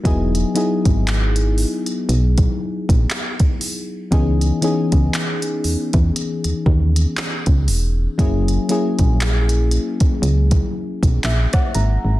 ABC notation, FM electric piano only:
X:1
M:4/4
L:1/16
Q:"Swing 16ths" 1/4=59
K:C#dor
V:1 name="FM electric piano"
[F,B,DEG]2 [F,B,DEG]6 z8 | [E,B,CDG]2 [E,B,CDG]6 z8 | [F,A,CEG]2 [F,A,CEG]6 z4 e f a2 |]